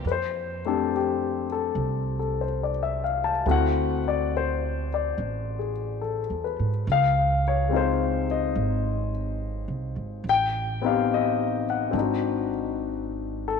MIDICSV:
0, 0, Header, 1, 3, 480
1, 0, Start_track
1, 0, Tempo, 851064
1, 19, Time_signature, 4, 2, 24, 8
1, 7670, End_track
2, 0, Start_track
2, 0, Title_t, "Grand piano"
2, 0, Program_c, 0, 0
2, 0, Control_c, 0, 64, 127
2, 27, Control_c, 0, 64, 0
2, 40, Note_on_c, 0, 71, 39
2, 65, Note_on_c, 0, 72, 51
2, 68, Note_off_c, 0, 71, 0
2, 110, Control_c, 0, 64, 127
2, 342, Note_off_c, 0, 72, 0
2, 368, Note_on_c, 0, 57, 37
2, 372, Note_on_c, 0, 60, 35
2, 374, Note_on_c, 0, 62, 31
2, 375, Note_on_c, 0, 67, 37
2, 383, Note_on_c, 0, 69, 47
2, 518, Note_off_c, 0, 69, 0
2, 532, Note_off_c, 0, 67, 0
2, 541, Note_on_c, 0, 67, 43
2, 821, Note_off_c, 0, 67, 0
2, 858, Note_on_c, 0, 69, 43
2, 1229, Note_off_c, 0, 69, 0
2, 1237, Note_on_c, 0, 69, 34
2, 1360, Note_on_c, 0, 72, 31
2, 1377, Note_off_c, 0, 69, 0
2, 1485, Note_on_c, 0, 74, 32
2, 1520, Note_off_c, 0, 72, 0
2, 1594, Note_on_c, 0, 76, 42
2, 1706, Note_off_c, 0, 74, 0
2, 1715, Note_on_c, 0, 77, 39
2, 1799, Note_off_c, 0, 76, 0
2, 1829, Note_on_c, 0, 81, 41
2, 1856, Note_off_c, 0, 77, 0
2, 1943, Note_off_c, 0, 57, 0
2, 1946, Note_off_c, 0, 60, 0
2, 1950, Control_c, 0, 64, 0
2, 1951, Note_on_c, 0, 57, 37
2, 1954, Note_off_c, 0, 62, 0
2, 1954, Note_on_c, 0, 60, 34
2, 1956, Note_on_c, 0, 64, 32
2, 1957, Note_on_c, 0, 66, 40
2, 1980, Note_on_c, 0, 78, 65
2, 1994, Note_off_c, 0, 81, 0
2, 2051, Control_c, 0, 64, 127
2, 2261, Note_off_c, 0, 78, 0
2, 2300, Note_on_c, 0, 74, 45
2, 2438, Note_off_c, 0, 74, 0
2, 2463, Note_on_c, 0, 72, 52
2, 2743, Note_off_c, 0, 72, 0
2, 2786, Note_on_c, 0, 74, 45
2, 3153, Note_on_c, 0, 68, 34
2, 3222, Note_off_c, 0, 74, 0
2, 3392, Note_on_c, 0, 69, 36
2, 3485, Note_off_c, 0, 68, 0
2, 3634, Note_on_c, 0, 71, 36
2, 3769, Note_off_c, 0, 69, 0
2, 3866, Note_off_c, 0, 57, 0
2, 3867, Note_off_c, 0, 60, 0
2, 3868, Note_off_c, 0, 64, 0
2, 3869, Note_off_c, 0, 66, 0
2, 3870, Control_c, 0, 64, 0
2, 3901, Note_on_c, 0, 77, 74
2, 3955, Control_c, 0, 64, 127
2, 3965, Note_off_c, 0, 71, 0
2, 4180, Note_off_c, 0, 77, 0
2, 4217, Note_on_c, 0, 73, 43
2, 4336, Note_on_c, 0, 56, 40
2, 4345, Note_on_c, 0, 60, 33
2, 4354, Note_off_c, 0, 73, 0
2, 4359, Note_on_c, 0, 63, 32
2, 4366, Note_on_c, 0, 65, 41
2, 4379, Note_on_c, 0, 72, 53
2, 4657, Note_off_c, 0, 72, 0
2, 4688, Note_on_c, 0, 75, 46
2, 5129, Note_off_c, 0, 75, 0
2, 5773, Note_off_c, 0, 56, 0
2, 5778, Note_off_c, 0, 60, 0
2, 5783, Control_c, 0, 64, 0
2, 5785, Note_off_c, 0, 63, 0
2, 5789, Note_off_c, 0, 65, 0
2, 5805, Note_on_c, 0, 79, 73
2, 5882, Control_c, 0, 64, 127
2, 6089, Note_off_c, 0, 79, 0
2, 6100, Note_on_c, 0, 59, 38
2, 6104, Note_on_c, 0, 60, 40
2, 6117, Note_on_c, 0, 63, 35
2, 6126, Note_on_c, 0, 77, 50
2, 6127, Note_on_c, 0, 67, 38
2, 6267, Note_off_c, 0, 77, 0
2, 6283, Note_on_c, 0, 75, 58
2, 6569, Note_off_c, 0, 75, 0
2, 6598, Note_on_c, 0, 78, 47
2, 6709, Note_off_c, 0, 60, 0
2, 6717, Note_on_c, 0, 60, 39
2, 6732, Note_on_c, 0, 62, 36
2, 6733, Note_off_c, 0, 59, 0
2, 6742, Note_off_c, 0, 63, 0
2, 6744, Control_c, 0, 64, 0
2, 6747, Note_off_c, 0, 67, 0
2, 6755, Note_on_c, 0, 63, 37
2, 6774, Note_on_c, 0, 66, 38
2, 6834, Control_c, 0, 64, 127
2, 7046, Note_off_c, 0, 78, 0
2, 7602, Note_on_c, 0, 69, 52
2, 7670, Note_off_c, 0, 60, 0
2, 7670, Note_off_c, 0, 62, 0
2, 7670, Note_off_c, 0, 63, 0
2, 7670, Note_off_c, 0, 66, 0
2, 7670, Note_off_c, 0, 69, 0
2, 7670, End_track
3, 0, Start_track
3, 0, Title_t, "Upright bass"
3, 0, Program_c, 1, 32
3, 25, Note_on_c, 1, 41, 57
3, 963, Note_off_c, 1, 41, 0
3, 987, Note_on_c, 1, 36, 60
3, 1923, Note_off_c, 1, 36, 0
3, 1950, Note_on_c, 1, 38, 58
3, 2884, Note_off_c, 1, 38, 0
3, 2920, Note_on_c, 1, 33, 59
3, 3528, Note_off_c, 1, 33, 0
3, 3552, Note_on_c, 1, 40, 45
3, 3696, Note_off_c, 1, 40, 0
3, 3719, Note_on_c, 1, 44, 46
3, 3859, Note_off_c, 1, 44, 0
3, 3875, Note_on_c, 1, 37, 66
3, 4802, Note_off_c, 1, 37, 0
3, 4825, Note_on_c, 1, 32, 58
3, 5437, Note_off_c, 1, 32, 0
3, 5459, Note_on_c, 1, 36, 45
3, 5606, Note_off_c, 1, 36, 0
3, 5618, Note_on_c, 1, 32, 44
3, 5766, Note_off_c, 1, 32, 0
3, 5774, Note_on_c, 1, 33, 58
3, 6713, Note_off_c, 1, 33, 0
3, 6729, Note_on_c, 1, 32, 63
3, 7670, Note_off_c, 1, 32, 0
3, 7670, End_track
0, 0, End_of_file